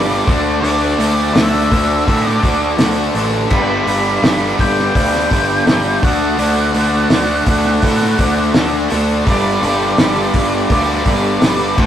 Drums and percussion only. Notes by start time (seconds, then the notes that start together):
0.28 kick, open hi-hat
0.64 open hi-hat
1.00 open hi-hat
1.35 snare, open hi-hat
1.72 kick, open hi-hat
2.08 kick, open hi-hat
2.26 snare
2.43 kick, open hi-hat
2.78 snare, open hi-hat
3.15 open hi-hat
3.50 kick, crash
3.87 open hi-hat
4.23 snare, open hi-hat
4.59 kick, open hi-hat
4.78 snare
4.95 kick, open hi-hat
5.15 snare
5.31 kick, open hi-hat
5.67 snare, open hi-hat
6.03 kick, open hi-hat
6.39 open hi-hat
6.74 open hi-hat
7.10 snare, open hi-hat
7.46 kick, open hi-hat
7.65 snare
7.82 kick, open hi-hat
8.02 snare
8.19 kick, open hi-hat
8.54 snare, open hi-hat
8.90 open hi-hat
9.27 kick, open hi-hat
9.63 open hi-hat
9.98 snare, open hi-hat
10.33 kick, open hi-hat
10.70 kick, open hi-hat
11.05 kick, open hi-hat
11.42 snare, open hi-hat
11.78 kick, crash